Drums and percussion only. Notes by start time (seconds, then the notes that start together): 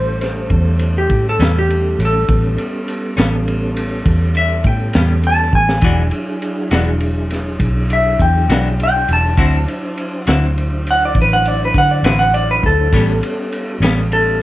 0.21 snare, ride
0.50 kick, ride
0.79 ride
1.10 kick, ride
1.40 snare, ride
1.70 ride
1.99 ride
2.28 kick, ride
2.58 ride
2.88 ride
3.18 snare, ride
3.48 ride
3.77 ride
4.06 kick, ride
4.35 ride
4.64 kick, ride
4.93 snare, ride
5.23 ride
5.53 kick
5.69 snare
5.81 kick, ride
6.11 ride
6.42 ride
6.71 snare, ride
7.01 ride
7.30 snare, ride
7.60 kick, ride
7.90 ride
8.19 kick, ride
8.50 snare, ride
8.80 ride
9.08 ride
9.37 kick, ride
9.69 ride
9.98 ride
10.27 snare, ride
10.57 ride
10.87 ride
11.15 kick, ride
11.46 ride
11.74 kick, ride
12.04 snare, ride
12.34 ride
12.63 kick, snare, ride
12.93 kick, ride
13.23 ride
13.52 ride
13.83 snare, ride
14.12 ride